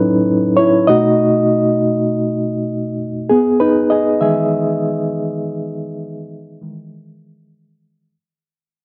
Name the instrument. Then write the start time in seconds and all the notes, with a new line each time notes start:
reed electric piano
Already playing: A2 F#3 C#4 D#4 E4 A4 B4 C#5
0.57 E4 C#5
0.87 B2 A3 D#4 F#4 D#5
3.30 B3 G#4
3.60 D#4 B4
3.90 G#4 D#5
4.21 D#3 E3 G#3 G#4 E5
6.62 D#3 E3 G#3